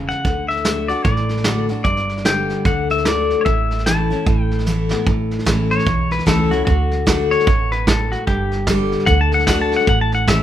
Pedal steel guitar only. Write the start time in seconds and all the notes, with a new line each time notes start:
0.09 F#5
0.48 E5
0.88 D5
1.04 D5
1.84 D5
2.26 G5
2.66 F#5
2.91 E5
3.07 D5
3.41 C#5 E5
3.86 A5
4.41 G5
5.71 C#5
6.12 B4
6.28 A4
6.51 F#4
6.65 F#4
7.31 C#5
7.72 B4
7.88 A4
8.12 F#4
8.27 G4
9.06 F#5
9.21 A5
9.34 F#5
9.47 F#5
9.62 A5
9.76 F#5
9.89 F#5
10.01 A5
10.15 F#5
10.28 E5